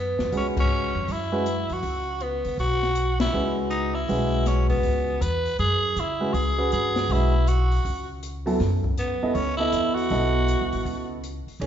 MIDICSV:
0, 0, Header, 1, 6, 480
1, 0, Start_track
1, 0, Tempo, 375940
1, 1376, Time_signature, 4, 2, 24, 8
1, 14894, End_track
2, 0, Start_track
2, 0, Title_t, "Upright piano"
2, 0, Program_c, 0, 0
2, 412, Note_on_c, 0, 66, 51
2, 414, Note_on_c, 0, 61, 51
2, 418, Note_on_c, 0, 56, 55
2, 425, Note_on_c, 0, 71, 67
2, 1141, Note_off_c, 0, 66, 0
2, 1142, Note_off_c, 0, 61, 0
2, 1144, Note_off_c, 0, 56, 0
2, 1148, Note_off_c, 0, 71, 0
2, 1685, Note_on_c, 0, 56, 76
2, 1687, Note_on_c, 0, 61, 68
2, 1691, Note_on_c, 0, 66, 66
2, 1691, Note_on_c, 0, 71, 82
2, 1839, Note_off_c, 0, 56, 0
2, 1840, Note_off_c, 0, 61, 0
2, 1842, Note_off_c, 0, 66, 0
2, 1842, Note_off_c, 0, 71, 0
2, 4251, Note_on_c, 0, 56, 66
2, 4253, Note_on_c, 0, 66, 61
2, 4260, Note_on_c, 0, 71, 68
2, 4262, Note_on_c, 0, 61, 58
2, 4980, Note_off_c, 0, 56, 0
2, 4981, Note_off_c, 0, 66, 0
2, 4984, Note_off_c, 0, 71, 0
2, 4985, Note_off_c, 0, 61, 0
2, 5217, Note_on_c, 0, 56, 69
2, 5218, Note_on_c, 0, 71, 74
2, 5219, Note_on_c, 0, 66, 62
2, 5222, Note_on_c, 0, 61, 63
2, 6553, Note_off_c, 0, 56, 0
2, 6554, Note_off_c, 0, 66, 0
2, 6554, Note_off_c, 0, 71, 0
2, 6556, Note_off_c, 0, 61, 0
2, 7922, Note_on_c, 0, 56, 66
2, 7926, Note_on_c, 0, 66, 60
2, 7928, Note_on_c, 0, 61, 61
2, 7929, Note_on_c, 0, 71, 69
2, 8077, Note_off_c, 0, 56, 0
2, 8079, Note_off_c, 0, 61, 0
2, 8079, Note_off_c, 0, 66, 0
2, 8080, Note_off_c, 0, 71, 0
2, 8399, Note_on_c, 0, 68, 67
2, 8406, Note_on_c, 0, 61, 59
2, 8406, Note_on_c, 0, 71, 75
2, 8408, Note_on_c, 0, 66, 60
2, 9018, Note_off_c, 0, 68, 0
2, 9021, Note_off_c, 0, 61, 0
2, 9022, Note_off_c, 0, 71, 0
2, 9023, Note_off_c, 0, 66, 0
2, 9066, Note_on_c, 0, 56, 63
2, 9072, Note_on_c, 0, 66, 60
2, 9072, Note_on_c, 0, 71, 75
2, 9074, Note_on_c, 0, 61, 59
2, 9339, Note_off_c, 0, 56, 0
2, 9342, Note_off_c, 0, 66, 0
2, 9342, Note_off_c, 0, 71, 0
2, 9343, Note_off_c, 0, 61, 0
2, 10798, Note_on_c, 0, 59, 63
2, 10804, Note_on_c, 0, 54, 74
2, 10805, Note_on_c, 0, 64, 68
2, 10814, Note_on_c, 0, 69, 78
2, 10955, Note_off_c, 0, 59, 0
2, 10958, Note_off_c, 0, 54, 0
2, 10958, Note_off_c, 0, 64, 0
2, 10963, Note_off_c, 0, 69, 0
2, 11781, Note_on_c, 0, 59, 70
2, 11781, Note_on_c, 0, 64, 66
2, 11781, Note_on_c, 0, 69, 66
2, 11781, Note_on_c, 0, 75, 81
2, 11926, Note_off_c, 0, 59, 0
2, 11927, Note_off_c, 0, 64, 0
2, 11927, Note_off_c, 0, 69, 0
2, 11927, Note_off_c, 0, 75, 0
2, 12251, Note_on_c, 0, 59, 71
2, 12252, Note_on_c, 0, 69, 65
2, 12256, Note_on_c, 0, 64, 64
2, 12256, Note_on_c, 0, 75, 76
2, 12865, Note_off_c, 0, 59, 0
2, 12866, Note_off_c, 0, 69, 0
2, 12868, Note_off_c, 0, 64, 0
2, 12868, Note_off_c, 0, 75, 0
2, 12910, Note_on_c, 0, 64, 60
2, 12911, Note_on_c, 0, 69, 66
2, 12913, Note_on_c, 0, 75, 74
2, 12914, Note_on_c, 0, 59, 69
2, 14242, Note_off_c, 0, 64, 0
2, 14243, Note_off_c, 0, 69, 0
2, 14244, Note_off_c, 0, 59, 0
2, 14244, Note_off_c, 0, 75, 0
2, 14823, Note_on_c, 0, 63, 54
2, 14823, Note_on_c, 0, 68, 57
2, 14827, Note_on_c, 0, 73, 70
2, 14828, Note_on_c, 0, 58, 57
2, 14894, Note_off_c, 0, 58, 0
2, 14894, Note_off_c, 0, 63, 0
2, 14894, Note_off_c, 0, 68, 0
2, 14894, Note_off_c, 0, 73, 0
2, 14894, End_track
3, 0, Start_track
3, 0, Title_t, "Tenor saxophone"
3, 0, Program_c, 1, 66
3, 0, Note_on_c, 1, 59, 77
3, 413, Note_off_c, 1, 59, 0
3, 476, Note_on_c, 1, 61, 74
3, 602, Note_off_c, 1, 61, 0
3, 770, Note_on_c, 1, 61, 94
3, 1427, Note_on_c, 1, 64, 94
3, 1446, Note_off_c, 1, 61, 0
3, 2213, Note_on_c, 1, 66, 93
3, 2232, Note_off_c, 1, 64, 0
3, 2843, Note_on_c, 1, 59, 81
3, 2862, Note_off_c, 1, 66, 0
3, 3309, Note_off_c, 1, 59, 0
3, 3315, Note_on_c, 1, 66, 102
3, 4043, Note_off_c, 1, 66, 0
3, 4099, Note_on_c, 1, 64, 91
3, 4538, Note_off_c, 1, 64, 0
3, 4730, Note_on_c, 1, 63, 92
3, 5041, Note_on_c, 1, 64, 90
3, 5060, Note_off_c, 1, 63, 0
3, 5709, Note_on_c, 1, 61, 86
3, 5728, Note_off_c, 1, 64, 0
3, 5990, Note_off_c, 1, 61, 0
3, 5998, Note_on_c, 1, 59, 90
3, 6662, Note_on_c, 1, 71, 104
3, 6682, Note_off_c, 1, 59, 0
3, 7135, Note_off_c, 1, 71, 0
3, 7143, Note_on_c, 1, 68, 109
3, 7660, Note_on_c, 1, 64, 93
3, 7679, Note_off_c, 1, 68, 0
3, 8091, Note_on_c, 1, 68, 100
3, 8111, Note_off_c, 1, 64, 0
3, 8573, Note_off_c, 1, 68, 0
3, 8591, Note_on_c, 1, 68, 96
3, 9092, Note_on_c, 1, 64, 100
3, 9111, Note_off_c, 1, 68, 0
3, 9557, Note_on_c, 1, 66, 87
3, 9577, Note_off_c, 1, 64, 0
3, 10336, Note_off_c, 1, 66, 0
3, 11475, Note_on_c, 1, 59, 83
3, 11931, Note_on_c, 1, 61, 91
3, 11950, Note_off_c, 1, 59, 0
3, 12211, Note_off_c, 1, 61, 0
3, 12219, Note_on_c, 1, 64, 101
3, 12701, Note_on_c, 1, 66, 95
3, 12720, Note_off_c, 1, 64, 0
3, 14326, Note_off_c, 1, 66, 0
3, 14894, End_track
4, 0, Start_track
4, 0, Title_t, "Upright bass"
4, 0, Program_c, 2, 32
4, 0, Note_on_c, 2, 42, 81
4, 191, Note_off_c, 2, 42, 0
4, 242, Note_on_c, 2, 40, 67
4, 403, Note_off_c, 2, 40, 0
4, 411, Note_on_c, 2, 37, 82
4, 1152, Note_off_c, 2, 37, 0
4, 1213, Note_on_c, 2, 41, 64
4, 1368, Note_off_c, 2, 41, 0
4, 1380, Note_on_c, 2, 42, 78
4, 2116, Note_off_c, 2, 42, 0
4, 2172, Note_on_c, 2, 41, 70
4, 2327, Note_off_c, 2, 41, 0
4, 2335, Note_on_c, 2, 37, 81
4, 3073, Note_off_c, 2, 37, 0
4, 3131, Note_on_c, 2, 49, 69
4, 3280, Note_off_c, 2, 49, 0
4, 3288, Note_on_c, 2, 35, 79
4, 4203, Note_off_c, 2, 35, 0
4, 4259, Note_on_c, 2, 37, 84
4, 5169, Note_off_c, 2, 37, 0
4, 5220, Note_on_c, 2, 35, 84
4, 6129, Note_off_c, 2, 35, 0
4, 6173, Note_on_c, 2, 37, 80
4, 6620, Note_off_c, 2, 37, 0
4, 6652, Note_on_c, 2, 40, 73
4, 7099, Note_off_c, 2, 40, 0
4, 7135, Note_on_c, 2, 42, 78
4, 7581, Note_off_c, 2, 42, 0
4, 7610, Note_on_c, 2, 49, 74
4, 8058, Note_off_c, 2, 49, 0
4, 8091, Note_on_c, 2, 37, 83
4, 8539, Note_off_c, 2, 37, 0
4, 8587, Note_on_c, 2, 43, 75
4, 9027, Note_off_c, 2, 43, 0
4, 9053, Note_on_c, 2, 35, 83
4, 9966, Note_off_c, 2, 35, 0
4, 10020, Note_on_c, 2, 37, 80
4, 10930, Note_off_c, 2, 37, 0
4, 10979, Note_on_c, 2, 42, 87
4, 11716, Note_off_c, 2, 42, 0
4, 11935, Note_on_c, 2, 37, 83
4, 12382, Note_off_c, 2, 37, 0
4, 12417, Note_on_c, 2, 40, 77
4, 12863, Note_off_c, 2, 40, 0
4, 12901, Note_on_c, 2, 35, 84
4, 13494, Note_off_c, 2, 35, 0
4, 13545, Note_on_c, 2, 37, 59
4, 13690, Note_off_c, 2, 37, 0
4, 13700, Note_on_c, 2, 32, 69
4, 13847, Note_off_c, 2, 32, 0
4, 13856, Note_on_c, 2, 37, 80
4, 14596, Note_off_c, 2, 37, 0
4, 14807, Note_on_c, 2, 35, 79
4, 14894, Note_off_c, 2, 35, 0
4, 14894, End_track
5, 0, Start_track
5, 0, Title_t, "Muted upright bass strokes"
5, 11785, Note_on_c, 9, 29, 40
5, 11913, Note_off_c, 9, 29, 0
5, 14643, Note_on_c, 9, 29, 38
5, 14771, Note_off_c, 9, 29, 0
5, 14894, End_track
6, 0, Start_track
6, 0, Title_t, "Drums"
6, 240, Note_on_c, 9, 38, 56
6, 368, Note_off_c, 9, 38, 0
6, 414, Note_on_c, 9, 46, 44
6, 541, Note_off_c, 9, 46, 0
6, 725, Note_on_c, 9, 36, 84
6, 730, Note_on_c, 9, 49, 69
6, 853, Note_off_c, 9, 36, 0
6, 857, Note_off_c, 9, 49, 0
6, 1383, Note_on_c, 9, 46, 47
6, 1511, Note_off_c, 9, 46, 0
6, 1865, Note_on_c, 9, 42, 55
6, 1992, Note_off_c, 9, 42, 0
6, 2163, Note_on_c, 9, 46, 40
6, 2291, Note_off_c, 9, 46, 0
6, 2332, Note_on_c, 9, 46, 46
6, 2459, Note_off_c, 9, 46, 0
6, 2815, Note_on_c, 9, 42, 55
6, 2943, Note_off_c, 9, 42, 0
6, 3122, Note_on_c, 9, 46, 39
6, 3250, Note_off_c, 9, 46, 0
6, 3306, Note_on_c, 9, 46, 46
6, 3434, Note_off_c, 9, 46, 0
6, 3609, Note_on_c, 9, 38, 34
6, 3737, Note_off_c, 9, 38, 0
6, 3769, Note_on_c, 9, 42, 56
6, 3897, Note_off_c, 9, 42, 0
6, 4083, Note_on_c, 9, 38, 87
6, 4083, Note_on_c, 9, 51, 68
6, 4211, Note_off_c, 9, 38, 0
6, 4211, Note_off_c, 9, 51, 0
6, 4732, Note_on_c, 9, 42, 55
6, 4859, Note_off_c, 9, 42, 0
6, 5222, Note_on_c, 9, 46, 46
6, 5350, Note_off_c, 9, 46, 0
6, 5694, Note_on_c, 9, 38, 37
6, 5694, Note_on_c, 9, 42, 57
6, 5821, Note_off_c, 9, 38, 0
6, 5821, Note_off_c, 9, 42, 0
6, 5997, Note_on_c, 9, 46, 39
6, 6000, Note_on_c, 9, 36, 55
6, 6124, Note_off_c, 9, 46, 0
6, 6128, Note_off_c, 9, 36, 0
6, 6168, Note_on_c, 9, 46, 46
6, 6296, Note_off_c, 9, 46, 0
6, 6659, Note_on_c, 9, 42, 57
6, 6786, Note_off_c, 9, 42, 0
6, 6968, Note_on_c, 9, 46, 41
6, 7096, Note_off_c, 9, 46, 0
6, 7136, Note_on_c, 9, 46, 45
6, 7263, Note_off_c, 9, 46, 0
6, 7618, Note_on_c, 9, 42, 55
6, 7746, Note_off_c, 9, 42, 0
6, 8098, Note_on_c, 9, 46, 48
6, 8226, Note_off_c, 9, 46, 0
6, 8577, Note_on_c, 9, 42, 53
6, 8705, Note_off_c, 9, 42, 0
6, 8885, Note_on_c, 9, 38, 59
6, 8885, Note_on_c, 9, 46, 41
6, 9013, Note_off_c, 9, 38, 0
6, 9013, Note_off_c, 9, 46, 0
6, 9060, Note_on_c, 9, 46, 47
6, 9187, Note_off_c, 9, 46, 0
6, 9542, Note_on_c, 9, 42, 55
6, 9670, Note_off_c, 9, 42, 0
6, 9851, Note_on_c, 9, 46, 41
6, 9978, Note_off_c, 9, 46, 0
6, 10029, Note_on_c, 9, 46, 49
6, 10157, Note_off_c, 9, 46, 0
6, 10505, Note_on_c, 9, 42, 56
6, 10633, Note_off_c, 9, 42, 0
6, 10813, Note_on_c, 9, 46, 41
6, 10941, Note_off_c, 9, 46, 0
6, 10980, Note_on_c, 9, 38, 39
6, 10980, Note_on_c, 9, 46, 47
6, 11107, Note_off_c, 9, 38, 0
6, 11107, Note_off_c, 9, 46, 0
6, 11288, Note_on_c, 9, 36, 60
6, 11416, Note_off_c, 9, 36, 0
6, 11460, Note_on_c, 9, 42, 56
6, 11587, Note_off_c, 9, 42, 0
6, 11936, Note_on_c, 9, 46, 48
6, 12064, Note_off_c, 9, 46, 0
6, 12416, Note_on_c, 9, 42, 55
6, 12543, Note_off_c, 9, 42, 0
6, 12734, Note_on_c, 9, 46, 41
6, 12862, Note_off_c, 9, 46, 0
6, 12895, Note_on_c, 9, 46, 50
6, 13023, Note_off_c, 9, 46, 0
6, 13384, Note_on_c, 9, 42, 57
6, 13512, Note_off_c, 9, 42, 0
6, 13693, Note_on_c, 9, 46, 41
6, 13821, Note_off_c, 9, 46, 0
6, 13869, Note_on_c, 9, 46, 48
6, 13997, Note_off_c, 9, 46, 0
6, 14346, Note_on_c, 9, 42, 54
6, 14474, Note_off_c, 9, 42, 0
6, 14660, Note_on_c, 9, 46, 40
6, 14788, Note_off_c, 9, 46, 0
6, 14829, Note_on_c, 9, 51, 59
6, 14894, Note_off_c, 9, 51, 0
6, 14894, End_track
0, 0, End_of_file